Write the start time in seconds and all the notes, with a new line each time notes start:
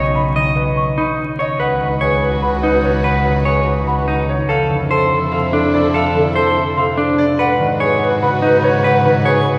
Already playing: B1 C#3 D#3 C#5 D#5
0.15 B5
0.36 D#3 D#5
0.56 B4
0.77 C#6
0.98 C#3 D#4 B5
1.39 C#5 D#5
1.59 C#2 F#4 B4 F#5
1.80 D#3 B4
2.01 G#4 B4 C#5
2.21 B4
2.42 C#3 B4 F#5 B5
2.63 D#4 B4
2.83 B4 C#5
3.04 B4 F#5
3.25 D#3 B4
3.45 G#4 B4 C#5
3.66 B4
3.87 C#3 B4 F#5 B5
4.08 D#4 B4
4.29 C#5
4.49 F2 E4 A4 F5
4.70 D3 A4
4.90 A4 C5
5.12 A4
5.32 C3 A4 F5 C6
5.53 D4 A4
5.74 A4 D5
5.94 A4 F5
6.15 D3 A4
6.36 A4 C5
6.56 A4
6.76 C3 A4 F5 C6
6.98 D4 A4
7.18 D5
7.39 G#2 F#4 B4 F#5
7.59 D#3 B4
7.80 G#4 B4 C#5
8.01 B4
8.22 C#3 B4 F#5 B5
8.42 D#4 B4
8.63 B4 C#5
8.84 B4 F#5
9.05 D#3 B4
9.25 G#4 B4 C#5
9.46 B4